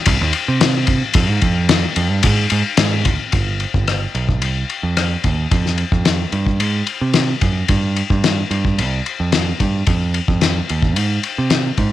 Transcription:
0.06 C2, kick, ride
0.21 D#2
0.33 ride
0.48 C3
0.61 snare, ride
0.87 kick, ride
1.14 F2, kick, ride
1.29 G#2
1.42 F2, kick, ride
1.69 snare, ride
1.96 F2, ride
2.10 G2
2.23 G#2, kick, ride
2.50 G#2, ride
2.77 G#2, snare, ride
3.05 D2, kick, ride
3.32 G1, kick, ride
3.60 ride
3.74 G1, kick
3.88 cross-stick, ride
4.15 B1, ride
4.29 kick
4.42 C2, ride
4.70 ride
4.83 F2
4.97 cross-stick, ride
5.24 D#2, kick, ride
5.51 F2, kick, ride
5.66 snare
5.78 ride
5.92 F2, kick
6.05 snare, ride
6.32 G2, ride
6.46 kick
6.60 G#2, ride
6.87 ride
7.01 C3
7.14 snare, ride
7.41 F#2, kick, ride
7.68 G2, kick, ride
7.96 ride
8.10 G2, kick
8.24 snare, ride
8.51 G2, ride
8.65 kick
8.79 C2, ride
9.06 ride
9.20 F2
9.32 snare, ride
9.60 G2, kick, ride
9.87 F2, kick, ride
10.14 ride
10.28 F2, kick
10.41 snare, ride
10.69 D#2, ride
10.82 kick
10.96 G#2, ride
11.23 ride
11.38 C3
11.50 snare, ride
11.78 G#2, kick, ride

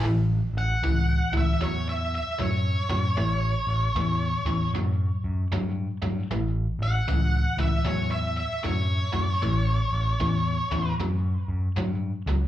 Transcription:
0.04 A1 A2 E3
0.54 A1
0.58 F#5
0.83 C#2 A2 E3
1.32 C#2 A2 E3
1.38 E5
1.61 E2 A2 F#3 C#5
1.89 E5
2.15 E5
2.39 F#2 A2 F#3 C#5
2.89 F#2 A2 F#3
3.17 A1 A2 E3
3.67 A1
3.95 E2 A2 E3
4.45 E2 A2 E3
4.74 F#2 A2 F#3
5.24 F#2
5.53 G2 A2 F#3
6.02 G2 A2 F#3
6.31 A1 A2 E3
6.79 A1 F#5
7.08 C#2 A2 E3
7.57 C#2 A2 E3 E5
7.85 E2 A2 F#3 C#5
8.11 E5
8.37 E5
8.64 F#2 A2 F#3 C#5
9.13 F#2 A2 F#3
9.42 A1 A2 E3
9.93 A1
10.20 E2 A2 E3
10.71 E2 A2 E3
11.00 F#2 A2 F#3
11.48 F#2
11.76 G2 A2 F#3
12.26 C#2 A2 F#3

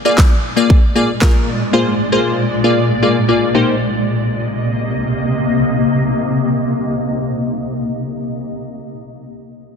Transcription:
Already playing: A#2 G#3 D5
0.05 A#3 F4 G#4 D5
0.18 kick, snare, clap
0.56 A#3 F4 G#4 D5
0.70 kick
0.95 A#3 F4 G#4 D5
1.21 A#3 F4 G#4 A#4, kick, snare, clap
1.73 A#3 F4 G#4 C5
2.12 A#3 F4 G#4 C5
2.64 A#3 F4 G#4 D5
3.03 A#3 F4 G#4 D5
3.29 A#3 F4 G#4 D5
3.55 C3 A#3 D#4 G4 C5 D#5

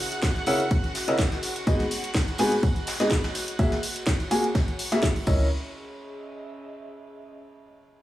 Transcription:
Already playing: C#4 F#4 G#4 E5 F#5
0.12 closed hi-hat, tambourine
0.22 kick, snare, closed hi-hat, ride, tambourine
0.36 snare, closed hi-hat, tambourine
0.46 C#3 C#4 E4 A#4 F#5, open hi-hat, ride, tambourine
0.60 closed hi-hat, tambourine
0.71 kick, closed hi-hat, ride, tambourine
0.84 closed hi-hat, tambourine
0.95 snare, open hi-hat, ride, tambourine
1.08 C#3 C#4 E4 A#4 D#5, closed hi-hat, ride, tambourine
1.18 kick, snare, closed hi-hat, ride, tambourine
1.32 snare, closed hi-hat, tambourine
1.43 open hi-hat, ride, tambourine
1.56 closed hi-hat, tambourine
1.67 G#2 B3 F#4 G#4 D#5, kick, closed hi-hat, ride, tambourine
1.79 B5, snare, closed hi-hat, tambourine
1.91 open hi-hat, ride, tambourine
2.04 D#5, closed hi-hat, tambourine
2.15 kick, snare, closed hi-hat, ride, tambourine
2.28 closed hi-hat, tambourine
2.38 G#2 B3 F#4 G#4 G#5, open hi-hat, tambourine
2.52 closed hi-hat, tambourine
2.63 kick, closed hi-hat, ride, tambourine
2.76 closed hi-hat, tambourine
2.87 snare, open hi-hat, ride, tambourine
3.00 G#2 B3 F#4 G#4 D#5, snare, closed hi-hat, ride, tambourine
3.11 kick, snare, closed hi-hat, tambourine
3.24 snare, closed hi-hat, ride, tambourine
3.35 snare, open hi-hat, ride, tambourine
3.48 closed hi-hat, tambourine
3.59 A#3 F#4 G#4 E5, kick, closed hi-hat, ride, tambourine
3.72 snare, closed hi-hat, tambourine
3.83 C#5, open hi-hat, ride, tambourine
3.96 closed hi-hat, tambourine
4.04 G#5, kick, snare, closed hi-hat, ride, tambourine
4.20 snare, closed hi-hat, tambourine
4.31 A#3 F#4 G#4 G#5, open hi-hat, ride, tambourine
4.43 A#5, closed hi-hat, tambourine
4.55 kick, snare, closed hi-hat, ride, tambourine
4.68 closed hi-hat, tambourine
4.79 open hi-hat, tambourine
4.92 A#3 F#4 G#4 E5, snare, closed hi-hat, ride, tambourine
5.03 kick, snare, closed hi-hat, tambourine
5.16 closed hi-hat, open hi-hat, tambourine
5.27 C#2 C#4 E4 A#4 D#5, kick, crash, tambourine
5.35 G#4
5.40 tambourine
5.66 D#5
5.73 E5

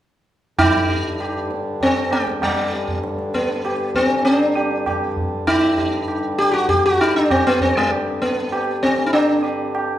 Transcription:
0.59 G2 D3 D#4, tabla na, tabla ge
0.90 G4, tabla ge
1.20 G4, tabla na
1.50 tabla te
1.81 C4, tabla tin, tabla ge
2.12 G#3, tabla na
2.26 tabla ke
2.42 G3, tabla na, tabla ge
2.73 G4, tabla te
2.88 tabla ge
3.04 tabla te
3.19 tabla te
3.34 B3, tabla ke
3.49 tabla te
3.65 G4, tabla na
3.95 C4, tabla ke
4.10 tabla te
4.25 D4, tabla na
4.56 G4, tabla na
4.86 G4, tabla na, tabla ge
5.17 tabla ge
5.47 D#4, tabla na, tabla ge
5.78 G4, tabla ge
6.08 tabla na
6.38 G4, tabla te
6.51 F#4 G4
6.69 G4, tabla tin, tabla ge
6.86 F#4
7.00 D#4, tabla na
7.16 D4
7.30 C4, tabla na, tabla ge
7.47 B3
7.61 C4, tabla ge
7.77 G#3
7.91 tabla na
8.22 B3, tabla ke
8.52 G4, tabla na
8.83 C4, tabla ke
8.99 tabla te
9.06 D#4
9.13 D4, tabla na
9.44 G4, tabla na
9.75 tabla na

